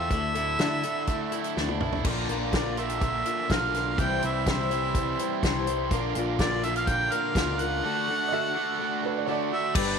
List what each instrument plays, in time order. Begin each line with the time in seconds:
Already playing: overdriven electric guitar F3 A3 C4, twelve-string acoustic guitar C4 F4 A4, harmonica E5
0.10 picked electric bass D2, twelve-string acoustic guitar D3 A3 D4 E4 A4, kick, closed hi-hat
0.35 twelve-string acoustic guitar D4 E4 A4, closed hi-hat
0.59 picked electric bass D3, twelve-string acoustic guitar D3 A3 D4 E4 A4, snare, closed hi-hat
0.83 overdriven electric guitar D3, twelve-string acoustic guitar D4 E4 A4, closed hi-hat
1.07 twelve-string acoustic guitar A3 D4 E4, kick, closed hi-hat
1.12 twelve-string acoustic guitar A4
1.32 twelve-string acoustic guitar D4 E4 A4, closed hi-hat
1.44 closed hi-hat
1.56 picked electric bass D2, twelve-string acoustic guitar D3 A3 D4 E4 A4, snare
1.68 high tom
1.81 picked electric bass B1, twelve-string acoustic guitar D4 E4 A4, mid tom
1.93 floor tom
2.05 picked electric bass A#1, twelve-string acoustic guitar A#2 F3 A#3 D4 F4 A#4, overdriven electric guitar D3, kick, crash
2.28 picked electric bass A#1, twelve-string acoustic guitar D4 F4 A#4, closed hi-hat
2.33 twelve-string acoustic guitar A#3
2.53 twelve-string acoustic guitar A#2 F3 A#3 D4 F4 A#4, harmonica D5, kick, snare, closed hi-hat
2.77 overdriven electric guitar A#2 D3, twelve-string acoustic guitar A#3 D4 F4 A#4, harmonica E5, closed hi-hat
2.89 closed hi-hat
3.01 twelve-string acoustic guitar A#3 D4 F4 A#4, kick, closed hi-hat
3.25 twelve-string acoustic guitar A#3 D4 F4 A#4, closed hi-hat
3.49 picked electric bass B1, twelve-string acoustic guitar A#2 F3 A#3 D4 F4 A#4, overdriven electric guitar D3, harmonica F5, kick, snare, closed hi-hat
3.74 twelve-string acoustic guitar A#3 D4 F4 A#4, snare, closed hi-hat
3.98 picked electric bass C2, twelve-string acoustic guitar C3 E3 G3 C4 E4 C5, harmonica G5, kick, closed hi-hat
4.22 picked electric bass C2, twelve-string acoustic guitar G3 C4 E4 C5, harmonica E5, closed hi-hat
4.46 twelve-string acoustic guitar C3 E3 G3 C4 E4 C5, harmonica E5, kick, snare, closed hi-hat
4.71 overdriven electric guitar C3 E3, twelve-string acoustic guitar G3 C4 E4 C5, closed hi-hat
4.95 twelve-string acoustic guitar G3 C4 E4 C5, kick, closed hi-hat
5.19 twelve-string acoustic guitar G3 C4 E4 C5, closed hi-hat
5.43 picked electric bass C2, twelve-string acoustic guitar C3 E3 G3 C4 E4 C5, kick, snare, closed hi-hat
5.67 twelve-string acoustic guitar G3 C4 E4 C5, closed hi-hat
5.91 picked electric bass A#1, twelve-string acoustic guitar A#2 F3 A#3 D4 F4 A#4, overdriven electric guitar D3, tonewheel organ A#4 F5 D6, kick, closed hi-hat
6.15 picked electric bass A#1, twelve-string acoustic guitar D4 F4 A#4, closed hi-hat
6.19 twelve-string acoustic guitar A#3
6.39 twelve-string acoustic guitar A#2 F3 A#3 D4 F4 A#4, harmonica D5, kick, snare, closed hi-hat
6.63 overdriven electric guitar A#2 D3, twelve-string acoustic guitar A#3 D4 F4 A#4, harmonica E5, closed hi-hat
6.76 harmonica F5, closed hi-hat
6.87 twelve-string acoustic guitar A#3 D4 F4 A#4, harmonica G5, kick, closed hi-hat
7.12 twelve-string acoustic guitar A#3 D4 F4 A#4, harmonica F5, closed hi-hat
7.35 picked electric bass C#2, twelve-string acoustic guitar A#2 F3 A#3 D4 F4 A#4, overdriven electric guitar D3, kick, snare, closed hi-hat
7.59 twelve-string acoustic guitar A#3 D4 F4 A#4, harmonica F#5, closed hi-hat
7.82 twelve-string acoustic guitar D3 A3 D4 F#4, tonewheel organ A4 F#5 D6
7.86 twelve-string acoustic guitar A4
8.08 twelve-string acoustic guitar D4 F#4 A4
8.28 twelve-string acoustic guitar D3, upright piano D#5
8.32 twelve-string acoustic guitar A3 D4 F#4 A4, upright piano E5
8.55 overdriven electric guitar D3 A3, twelve-string acoustic guitar D4 F#4 A4
8.79 twelve-string acoustic guitar A3 D4 F#4 A4
9.03 twelve-string acoustic guitar D4 F#4 A4, upright piano B4
9.18 upright piano D5
9.26 twelve-string acoustic guitar D3 A3 D4 F#4 A4, upright piano C#5
9.31 upright piano D5
9.51 twelve-string acoustic guitar D4 F#4 A4, harmonica E5
9.75 picked electric bass G1, twelve-string acoustic guitar G3 D4 G4 B4, overdriven electric guitar B3, tonewheel organ B4 G5 D6, harmonica D5, kick, crash